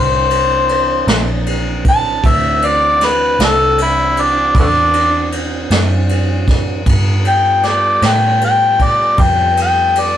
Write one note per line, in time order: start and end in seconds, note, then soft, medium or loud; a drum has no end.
0.00 1.04 C2 medium
0.00 2.21 E3 medium
0.00 2.21 C4 medium
0.00 2.21 D4 medium
0.00 2.21 A#4 medium
0.00 1.45 C5 loud
0.30 ride medium
0.69 ride medium
1.07 2.20 A#1 loud
1.07 snare loud
1.07 ride medium
1.46 ride medium
1.85 kick medium
1.85 ride medium
1.90 2.29 A5 loud
2.22 3.36 D2 loud
2.22 6.82 E3 medium
2.22 6.82 C4 medium
2.22 6.82 D4 medium
2.22 6.82 F#4 medium
2.22 kick loud
2.22 ride medium
2.27 2.67 E5 medium
2.62 3.07 D5 loud
2.62 ride medium
3.01 snare soft
3.01 ride medium
3.05 3.41 B4 loud
3.39 4.52 C2 loud
3.39 snare loud
3.39 ride medium
3.44 3.79 A4 loud
3.78 ride medium
3.82 4.23 E4 loud
4.17 ride medium
4.21 4.56 D4 loud
4.55 5.67 E2 medium
4.55 kick loud
4.55 ride medium
4.60 4.68 A3 medium
4.60 4.66 B3 medium
4.60 5.32 D4 loud
4.93 ride medium
5.32 ride medium
5.70 6.83 F#2 medium
5.70 snare loud
5.70 ride medium
6.09 ride medium
6.47 kick medium
6.47 snare soft
6.47 ride medium
6.86 7.99 G2 medium
6.86 10.17 G3 medium
6.86 10.17 B3 medium
6.86 10.17 F4 medium
6.86 10.17 A4 medium
6.86 kick loud
6.86 ride medium
7.25 7.68 G5 loud
7.25 ride medium
7.63 8.08 D5 medium
7.63 snare soft
7.63 ride medium
8.02 9.15 A2 loud
8.02 snare loud
8.02 ride medium
8.07 8.42 G5 medium
8.41 8.85 G5 loud
8.41 ride medium
8.79 kick medium
8.79 ride medium
8.84 9.23 D5 loud
9.18 10.17 F2 medium
9.18 9.58 G5 medium
9.18 kick loud
9.18 ride medium
9.57 ride medium
9.62 10.02 G5 medium
9.95 ride medium
10.00 10.17 D5 medium